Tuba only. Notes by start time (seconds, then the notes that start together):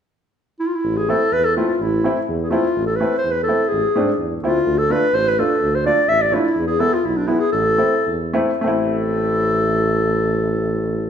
0.84 A1
1.32 E2
1.80 A1
2.29 E2
2.76 A1
3.24 E2
3.71 A1
3.95 G#2
4.18 E2
4.42 D2
4.65 D2
5.13 A1
5.60 D2
6.08 A1
6.56 E2
7.04 B1
7.53 A1
8.07 E2
8.66 A1